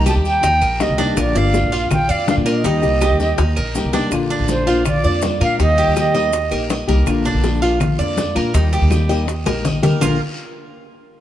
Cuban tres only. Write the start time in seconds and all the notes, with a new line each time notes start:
0.06 G4
0.43 D#4
0.62 A#4
0.98 D4
1.17 A#4
1.35 D5
1.72 F4
2.09 D5
2.46 A#4
2.64 D#4
3.01 G4
3.38 D#4
3.57 A#4
3.93 D4
4.30 D4
4.67 F4
5.04 D5
5.41 A#4
5.60 D#4
5.78 G4
6.14 D#5
6.51 A#4
6.70 D#5
6.89 A#4
7.25 D4
7.62 F4
7.99 D5
8.36 A#4
8.54 D#4
8.73 G4
9.09 D#5
9.46 A#4
9.65 D#5
9.83 A#4
10.01 A#3 F4 A#4